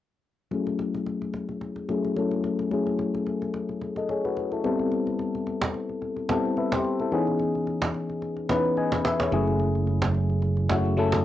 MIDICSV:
0, 0, Header, 1, 4, 480
1, 0, Start_track
1, 0, Tempo, 550459
1, 447, Time_signature, 4, 2, 24, 8
1, 9807, End_track
2, 0, Start_track
2, 0, Title_t, "FM electric piano"
2, 0, Program_c, 0, 5
2, 445, Note_on_c, 0, 54, 75
2, 449, Note_on_c, 0, 57, 72
2, 454, Note_on_c, 0, 61, 72
2, 459, Note_on_c, 0, 64, 72
2, 463, Note_on_c, 0, 68, 88
2, 631, Control_c, 0, 64, 127
2, 1219, Note_off_c, 0, 54, 0
2, 1221, Note_off_c, 0, 57, 0
2, 1223, Note_off_c, 0, 61, 0
2, 1226, Note_off_c, 0, 64, 0
2, 1228, Note_off_c, 0, 68, 0
2, 1644, Note_on_c, 0, 54, 79
2, 1649, Note_on_c, 0, 57, 66
2, 1653, Note_on_c, 0, 61, 69
2, 1658, Note_on_c, 0, 64, 66
2, 1663, Note_on_c, 0, 68, 87
2, 1842, Note_off_c, 0, 54, 0
2, 1845, Note_off_c, 0, 57, 0
2, 1847, Note_off_c, 0, 61, 0
2, 1849, Note_off_c, 0, 64, 0
2, 1852, Note_off_c, 0, 68, 0
2, 1884, Note_on_c, 0, 54, 83
2, 1889, Note_on_c, 0, 57, 79
2, 1894, Note_on_c, 0, 61, 80
2, 1899, Note_on_c, 0, 64, 77
2, 1903, Note_on_c, 0, 69, 89
2, 2279, Note_off_c, 0, 54, 0
2, 2282, Note_off_c, 0, 57, 0
2, 2284, Note_off_c, 0, 61, 0
2, 2286, Note_off_c, 0, 64, 0
2, 2289, Note_off_c, 0, 69, 0
2, 2364, Note_on_c, 0, 54, 77
2, 2369, Note_on_c, 0, 57, 75
2, 2374, Note_on_c, 0, 61, 75
2, 2378, Note_on_c, 0, 64, 72
2, 2383, Note_on_c, 0, 68, 86
2, 3139, Note_off_c, 0, 54, 0
2, 3141, Note_off_c, 0, 57, 0
2, 3143, Note_off_c, 0, 61, 0
2, 3145, Note_off_c, 0, 64, 0
2, 3148, Note_off_c, 0, 68, 0
2, 3466, Note_on_c, 0, 75, 60
2, 3471, Note_on_c, 0, 69, 51
2, 3565, Note_off_c, 0, 75, 0
2, 3568, Note_off_c, 0, 69, 0
2, 3575, Note_on_c, 0, 73, 67
2, 3580, Note_on_c, 0, 68, 61
2, 3697, Note_off_c, 0, 73, 0
2, 3699, Note_off_c, 0, 68, 0
2, 3705, Note_on_c, 0, 71, 67
2, 3711, Note_on_c, 0, 66, 59
2, 3931, Note_off_c, 0, 71, 0
2, 3933, Note_off_c, 0, 66, 0
2, 3945, Note_on_c, 0, 69, 64
2, 3950, Note_on_c, 0, 64, 55
2, 4044, Note_on_c, 0, 55, 89
2, 4048, Note_off_c, 0, 64, 0
2, 4049, Note_on_c, 0, 59, 81
2, 4053, Note_off_c, 0, 69, 0
2, 4054, Note_on_c, 0, 60, 79
2, 4058, Note_on_c, 0, 64, 78
2, 4060, Control_c, 0, 64, 0
2, 4063, Note_on_c, 0, 69, 91
2, 4206, Control_c, 0, 64, 127
2, 4818, Note_off_c, 0, 55, 0
2, 4821, Note_off_c, 0, 59, 0
2, 4823, Note_off_c, 0, 60, 0
2, 4826, Note_off_c, 0, 64, 0
2, 4828, Note_off_c, 0, 69, 0
2, 5483, Note_on_c, 0, 55, 76
2, 5488, Note_on_c, 0, 59, 68
2, 5493, Note_on_c, 0, 60, 70
2, 5497, Note_on_c, 0, 64, 70
2, 5502, Note_on_c, 0, 69, 85
2, 5682, Note_off_c, 0, 55, 0
2, 5684, Note_off_c, 0, 59, 0
2, 5687, Note_off_c, 0, 60, 0
2, 5689, Note_off_c, 0, 64, 0
2, 5691, Note_off_c, 0, 69, 0
2, 5733, Note_on_c, 0, 76, 67
2, 5738, Note_on_c, 0, 71, 56
2, 5856, Note_off_c, 0, 76, 0
2, 5858, Note_off_c, 0, 71, 0
2, 5864, Note_on_c, 0, 72, 74
2, 5870, Note_on_c, 0, 67, 61
2, 6090, Note_off_c, 0, 72, 0
2, 6093, Note_off_c, 0, 67, 0
2, 6105, Note_on_c, 0, 69, 63
2, 6110, Note_on_c, 0, 64, 56
2, 6203, Note_on_c, 0, 52, 78
2, 6208, Note_on_c, 0, 59, 77
2, 6212, Note_on_c, 0, 61, 74
2, 6217, Note_on_c, 0, 63, 74
2, 6218, Control_c, 0, 64, 0
2, 6222, Note_on_c, 0, 68, 89
2, 6330, Note_off_c, 0, 69, 0
2, 6333, Note_off_c, 0, 64, 0
2, 6346, Control_c, 0, 64, 127
2, 6978, Note_off_c, 0, 52, 0
2, 6980, Note_off_c, 0, 59, 0
2, 6982, Note_off_c, 0, 61, 0
2, 6985, Note_off_c, 0, 63, 0
2, 6987, Note_off_c, 0, 68, 0
2, 7403, Note_on_c, 0, 52, 76
2, 7408, Note_on_c, 0, 59, 69
2, 7412, Note_on_c, 0, 61, 70
2, 7418, Note_on_c, 0, 63, 66
2, 7422, Note_on_c, 0, 71, 85
2, 7602, Note_off_c, 0, 52, 0
2, 7604, Note_off_c, 0, 59, 0
2, 7607, Note_off_c, 0, 61, 0
2, 7609, Note_off_c, 0, 63, 0
2, 7612, Note_off_c, 0, 71, 0
2, 7652, Note_on_c, 0, 80, 62
2, 7657, Note_on_c, 0, 75, 55
2, 7878, Note_off_c, 0, 80, 0
2, 7881, Note_off_c, 0, 75, 0
2, 7893, Note_on_c, 0, 76, 71
2, 7898, Note_on_c, 0, 71, 60
2, 8016, Note_off_c, 0, 76, 0
2, 8018, Note_off_c, 0, 71, 0
2, 8025, Note_on_c, 0, 73, 60
2, 8030, Note_on_c, 0, 68, 54
2, 8123, Note_on_c, 0, 54, 80
2, 8128, Note_on_c, 0, 57, 72
2, 8132, Note_off_c, 0, 68, 0
2, 8133, Note_on_c, 0, 61, 73
2, 8137, Note_on_c, 0, 64, 76
2, 8138, Control_c, 0, 64, 0
2, 8142, Note_on_c, 0, 68, 88
2, 8250, Note_off_c, 0, 73, 0
2, 8309, Control_c, 0, 64, 127
2, 8898, Note_off_c, 0, 54, 0
2, 8900, Note_off_c, 0, 57, 0
2, 8903, Note_off_c, 0, 61, 0
2, 8905, Note_off_c, 0, 64, 0
2, 8908, Note_off_c, 0, 68, 0
2, 9323, Note_on_c, 0, 54, 77
2, 9328, Note_on_c, 0, 57, 69
2, 9332, Note_on_c, 0, 61, 70
2, 9337, Note_on_c, 0, 64, 72
2, 9343, Note_on_c, 0, 66, 81
2, 9522, Note_off_c, 0, 54, 0
2, 9524, Note_off_c, 0, 57, 0
2, 9527, Note_off_c, 0, 61, 0
2, 9529, Note_off_c, 0, 64, 0
2, 9532, Note_off_c, 0, 66, 0
2, 9563, Note_on_c, 0, 54, 84
2, 9568, Note_on_c, 0, 57, 78
2, 9572, Note_on_c, 0, 61, 76
2, 9577, Note_on_c, 0, 64, 77
2, 9582, Note_on_c, 0, 69, 93
2, 9807, Note_off_c, 0, 54, 0
2, 9807, Note_off_c, 0, 57, 0
2, 9807, Note_off_c, 0, 61, 0
2, 9807, Note_off_c, 0, 64, 0
2, 9807, Note_off_c, 0, 69, 0
2, 9807, End_track
3, 0, Start_track
3, 0, Title_t, "Fingered electric bass"
3, 0, Program_c, 1, 33
3, 8128, Note_on_c, 1, 30, 82
3, 9807, Note_off_c, 1, 30, 0
3, 9807, End_track
4, 0, Start_track
4, 0, Title_t, "Cajon"
4, 447, Note_on_c, 9, 38, 35
4, 534, Note_off_c, 9, 38, 0
4, 581, Note_on_c, 9, 38, 28
4, 668, Note_off_c, 9, 38, 0
4, 687, Note_on_c, 9, 38, 50
4, 775, Note_off_c, 9, 38, 0
4, 824, Note_on_c, 9, 38, 31
4, 911, Note_off_c, 9, 38, 0
4, 928, Note_on_c, 9, 38, 37
4, 1015, Note_off_c, 9, 38, 0
4, 1061, Note_on_c, 9, 38, 29
4, 1149, Note_off_c, 9, 38, 0
4, 1166, Note_on_c, 9, 38, 50
4, 1253, Note_off_c, 9, 38, 0
4, 1298, Note_on_c, 9, 38, 25
4, 1385, Note_off_c, 9, 38, 0
4, 1407, Note_on_c, 9, 38, 41
4, 1494, Note_off_c, 9, 38, 0
4, 1535, Note_on_c, 9, 38, 28
4, 1622, Note_off_c, 9, 38, 0
4, 1647, Note_on_c, 9, 38, 47
4, 1734, Note_off_c, 9, 38, 0
4, 1784, Note_on_c, 9, 38, 25
4, 1871, Note_off_c, 9, 38, 0
4, 1888, Note_on_c, 9, 38, 38
4, 1975, Note_off_c, 9, 38, 0
4, 2018, Note_on_c, 9, 38, 26
4, 2105, Note_off_c, 9, 38, 0
4, 2127, Note_on_c, 9, 38, 49
4, 2214, Note_off_c, 9, 38, 0
4, 2259, Note_on_c, 9, 38, 29
4, 2346, Note_off_c, 9, 38, 0
4, 2366, Note_on_c, 9, 38, 35
4, 2454, Note_off_c, 9, 38, 0
4, 2500, Note_on_c, 9, 38, 27
4, 2587, Note_off_c, 9, 38, 0
4, 2607, Note_on_c, 9, 38, 50
4, 2694, Note_off_c, 9, 38, 0
4, 2743, Note_on_c, 9, 38, 31
4, 2831, Note_off_c, 9, 38, 0
4, 2848, Note_on_c, 9, 38, 34
4, 2935, Note_off_c, 9, 38, 0
4, 2982, Note_on_c, 9, 38, 29
4, 3069, Note_off_c, 9, 38, 0
4, 3086, Note_on_c, 9, 38, 49
4, 3173, Note_off_c, 9, 38, 0
4, 3218, Note_on_c, 9, 38, 25
4, 3306, Note_off_c, 9, 38, 0
4, 3327, Note_on_c, 9, 38, 43
4, 3415, Note_off_c, 9, 38, 0
4, 3455, Note_on_c, 9, 38, 28
4, 3542, Note_off_c, 9, 38, 0
4, 3567, Note_on_c, 9, 38, 48
4, 3655, Note_off_c, 9, 38, 0
4, 3705, Note_on_c, 9, 38, 25
4, 3792, Note_off_c, 9, 38, 0
4, 3809, Note_on_c, 9, 38, 37
4, 3896, Note_off_c, 9, 38, 0
4, 3939, Note_on_c, 9, 38, 26
4, 4026, Note_off_c, 9, 38, 0
4, 4048, Note_on_c, 9, 38, 47
4, 4136, Note_off_c, 9, 38, 0
4, 4181, Note_on_c, 9, 38, 29
4, 4268, Note_off_c, 9, 38, 0
4, 4287, Note_on_c, 9, 38, 36
4, 4374, Note_off_c, 9, 38, 0
4, 4421, Note_on_c, 9, 38, 28
4, 4508, Note_off_c, 9, 38, 0
4, 4527, Note_on_c, 9, 38, 51
4, 4615, Note_off_c, 9, 38, 0
4, 4664, Note_on_c, 9, 38, 31
4, 4751, Note_off_c, 9, 38, 0
4, 4768, Note_on_c, 9, 38, 37
4, 4855, Note_off_c, 9, 38, 0
4, 4896, Note_on_c, 9, 38, 94
4, 4983, Note_off_c, 9, 38, 0
4, 5006, Note_on_c, 9, 38, 51
4, 5093, Note_off_c, 9, 38, 0
4, 5138, Note_on_c, 9, 38, 25
4, 5226, Note_off_c, 9, 38, 0
4, 5247, Note_on_c, 9, 38, 43
4, 5335, Note_off_c, 9, 38, 0
4, 5375, Note_on_c, 9, 38, 28
4, 5462, Note_off_c, 9, 38, 0
4, 5485, Note_on_c, 9, 38, 86
4, 5572, Note_off_c, 9, 38, 0
4, 5625, Note_on_c, 9, 38, 25
4, 5712, Note_off_c, 9, 38, 0
4, 5728, Note_on_c, 9, 38, 37
4, 5815, Note_off_c, 9, 38, 0
4, 5859, Note_on_c, 9, 38, 90
4, 5946, Note_off_c, 9, 38, 0
4, 5967, Note_on_c, 9, 38, 48
4, 6055, Note_off_c, 9, 38, 0
4, 6099, Note_on_c, 9, 38, 29
4, 6186, Note_off_c, 9, 38, 0
4, 6207, Note_on_c, 9, 38, 36
4, 6294, Note_off_c, 9, 38, 0
4, 6340, Note_on_c, 9, 38, 27
4, 6428, Note_off_c, 9, 38, 0
4, 6447, Note_on_c, 9, 38, 49
4, 6534, Note_off_c, 9, 38, 0
4, 6583, Note_on_c, 9, 38, 31
4, 6671, Note_off_c, 9, 38, 0
4, 6688, Note_on_c, 9, 38, 35
4, 6775, Note_off_c, 9, 38, 0
4, 6816, Note_on_c, 9, 38, 98
4, 6904, Note_off_c, 9, 38, 0
4, 6926, Note_on_c, 9, 38, 51
4, 7014, Note_off_c, 9, 38, 0
4, 7058, Note_on_c, 9, 38, 26
4, 7146, Note_off_c, 9, 38, 0
4, 7168, Note_on_c, 9, 38, 41
4, 7255, Note_off_c, 9, 38, 0
4, 7295, Note_on_c, 9, 38, 28
4, 7382, Note_off_c, 9, 38, 0
4, 7406, Note_on_c, 9, 38, 85
4, 7493, Note_off_c, 9, 38, 0
4, 7545, Note_on_c, 9, 38, 25
4, 7633, Note_off_c, 9, 38, 0
4, 7648, Note_on_c, 9, 38, 38
4, 7735, Note_off_c, 9, 38, 0
4, 7779, Note_on_c, 9, 38, 85
4, 7866, Note_off_c, 9, 38, 0
4, 7890, Note_on_c, 9, 38, 93
4, 7977, Note_off_c, 9, 38, 0
4, 8020, Note_on_c, 9, 38, 89
4, 8108, Note_off_c, 9, 38, 0
4, 8127, Note_on_c, 9, 38, 36
4, 8214, Note_off_c, 9, 38, 0
4, 8260, Note_on_c, 9, 38, 28
4, 8347, Note_off_c, 9, 38, 0
4, 8367, Note_on_c, 9, 38, 49
4, 8454, Note_off_c, 9, 38, 0
4, 8503, Note_on_c, 9, 38, 30
4, 8590, Note_off_c, 9, 38, 0
4, 8608, Note_on_c, 9, 38, 37
4, 8695, Note_off_c, 9, 38, 0
4, 8736, Note_on_c, 9, 38, 93
4, 8823, Note_off_c, 9, 38, 0
4, 8846, Note_on_c, 9, 38, 51
4, 8933, Note_off_c, 9, 38, 0
4, 8978, Note_on_c, 9, 38, 25
4, 9065, Note_off_c, 9, 38, 0
4, 9087, Note_on_c, 9, 38, 42
4, 9174, Note_off_c, 9, 38, 0
4, 9215, Note_on_c, 9, 38, 27
4, 9302, Note_off_c, 9, 38, 0
4, 9326, Note_on_c, 9, 38, 86
4, 9413, Note_off_c, 9, 38, 0
4, 9465, Note_on_c, 9, 38, 25
4, 9552, Note_off_c, 9, 38, 0
4, 9568, Note_on_c, 9, 38, 39
4, 9656, Note_off_c, 9, 38, 0
4, 9699, Note_on_c, 9, 38, 85
4, 9786, Note_off_c, 9, 38, 0
4, 9807, End_track
0, 0, End_of_file